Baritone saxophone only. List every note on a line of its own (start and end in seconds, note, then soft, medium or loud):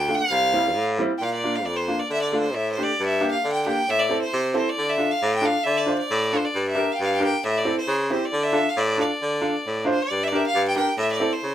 0.00 0.12 D2 medium
0.31 0.77 C2 medium
0.75 1.02 A2 loud
1.21 1.67 A#2 medium
1.65 1.92 F2 medium
2.10 2.56 D3 medium
2.55 2.81 A2 medium
3.00 3.26 G2 medium
3.44 3.71 D3 medium
3.89 4.15 A2 medium
4.33 4.60 C3 medium
4.78 5.05 D3 medium
5.22 5.49 A2 loud
5.66 5.92 D3 medium
6.10 6.37 A2 medium
6.55 6.81 G2 medium
7.00 7.26 G2 medium
7.44 7.71 A2 medium
7.87 8.14 C#3 loud
8.33 8.59 D3 loud
8.76 9.03 A2 loud
9.22 9.48 D3 medium
9.67 9.93 A2 medium
10.11 10.37 G2 medium
10.54 10.81 G2 medium
10.97 11.24 A2 loud
11.43 11.55 C#3 medium